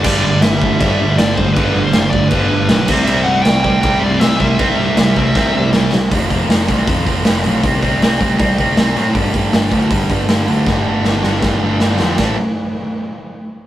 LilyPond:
<<
  \new Staff \with { instrumentName = "Lead electric guitar" } { \time 4/4 \key c \major \tempo 4 = 158 d''4 e''4 e''4 d''8 c''8 | b'8. c''8. d''8 b'4. r8 | e''8 fis''8 g''4 g''8 d''8 e''8 e''8~ | e''2. r4 |
\key a \minor r1 | r1 | r1 | r1 |
r1 | }
  \new Staff \with { instrumentName = "Distorted electric guitar" } { \clef bass \time 4/4 \key c \major <g, d g>2 <g, d g>2 | <g, d g>2 <g, d g>4. <c g c'>8~ | <c g c'>4. <c g c'>2 <c g c'>8~ | <c g c'>4. <c g c'>2 r8 |
\key a \minor r1 | r1 | r1 | r1 |
r1 | }
  \new Staff \with { instrumentName = "Distorted electric guitar" } { \clef bass \time 4/4 \key c \major <g, d g>8 <g, d>8 <g, d>8 <g, d>8 <g, d g>8 <g, d>8 <g, d>8 <g, d>8 | <g, d g>8 <g, d>8 <g, d>8 <g, d>8 <g, d g>8 <g, d>8 <g, d>8 <c g c'>8 | <c g c'>8 <c g>8 <c g>8 <c g>8 <c g c'>8 <c g>8 <c g>8 <c g>8 | <c g c'>8 <c g>8 <c g>8 <c g>8 <c g c'>8 <c g>8 <c g>8 <c g>8 |
\key a \minor <f, c f>8 <f, c f>8 <f, c f>8 <f, c f>8 <f, c f>8 <f, c f>8 <f, c f>8 <f, c f>8 | <c g c'>8 <c g c'>8 <c g c'>8 <c g c'>8 <c g c'>8 <c g c'>8 <c g c'>8 <c g c'>8 | <g, d g>8 <g, d g>8 <g, d g>8 <g, d g>8 <g, d g>8 <g, d g>8 <g, d g>8 <g, d g>8 | <g, d g>8 <g, d g>8 <g, d g>8 <g, d g>8 <g, d g>8 <g, d g>8 <g, d g>8 <g, d g>8 |
<a, e a>8 r2. r8 | }
  \new Staff \with { instrumentName = "Distorted electric guitar" } { \clef bass \time 4/4 \key c \major <g, d g>8 <g, d>8 <g, d>8 <g, d>8 <g, d g>8 <g, d>8 <g, d>8 <g, d>8 | <g, d g>8 <g, d>8 <g, d>8 <g, d>8 <g, d g>8 <g, d>8 <g, d>8 <c g c'>8 | <c g c'>8 <c g>8 <c g>8 <c g>8 <c g c'>8 <c g>8 <c g>8 <c g>8 | <c g c'>8 <c g>8 <c g>8 <c g>8 <c g c'>8 <c g>8 <c g>8 <c g>8 |
\key a \minor <f, c f>8 <f, c f>8 <f, c f>8 <f, c f>8 <f, c f>8 <f, c f>8 <f, c f>8 <f, c f>8 | <c g c'>8 <c g c'>8 <c g c'>8 <c g c'>8 <c g c'>8 <c g c'>8 <c g c'>8 <c g c'>8 | <g, d g>8 <g, d g>8 <g, d g>8 <g, d g>8 <g, d g>8 <g, d g>8 <g, d g>8 <g, d g>8 | <g, d g>8 <g, d g>8 <g, d g>8 <g, d g>8 <g, d g>8 <g, d g>8 <g, d g>8 <g, d g>8 |
<a, e a>8 r2. r8 | }
  \new Staff \with { instrumentName = "Picked electric bass" } { \clef bass \time 4/4 \key c \major g,,8 g,,8 g,,4 g,,8 g,,8 g,,8 g,,8 | g,,8 g,,8 g,,8 g,,8 g,,8 g,,8 b,,8 c,8 | c,8 c,8 c,4 c,8 c,8 c,8 c,8 | c,8 c,8 c,8 c,8 c,8 c,8 c,8 c,8 |
\key a \minor f,,8 f,,8 f,,8 c,8 f,8 f,,8 f,,8 b,,8 | c,8 c,8 c,8 c,8 c,8 c,8 c,8 a,8 | g,,8 g,,8 g,,8 d,8 g,8 g,,8 g,,8 d,8 | g,,8 g,,8 g,,8 g,,8 g,,8 g,,8 g,,8 f,8 |
a,,8 r2. r8 | }
  \new DrumStaff \with { instrumentName = "Drums" } \drummode { \time 4/4 <cymc bd>4 <cymc sn>8 bd8 <cymc bd>4 <cymc sn>8 bd8 | <cymc bd>4 <cymc sn>8 bd8 <cymc bd>4 <cymc sn>8 <cymc bd>8 | cymc4 <cymc sn>8 bd8 <cymc bd>4 <cymc sn>8 bd8 | <cymc bd>4 <cymc sn>8 bd8 <bd sn>4 sn8 sn8 |
<hho bd>8 <hho bd>8 <hho sn>8 <hho bd>8 <hho bd>8 <hho bd>8 <hho sn>8 hho8 | <hho bd>8 <hho bd>8 <hho sn>8 <hho bd>8 <hho bd>8 <hho bd>8 <hho sn>8 hho8 | <hho bd>8 <hho bd>8 <hho sn>8 <hho bd>8 <hho bd>8 <hho bd>8 <hho sn>8 hho8 | <bd sn>4 sn8 sn8 <bd sn>4 sn8 sn8 |
<cymc bd sn>4 r4 r4 r4 | }
>>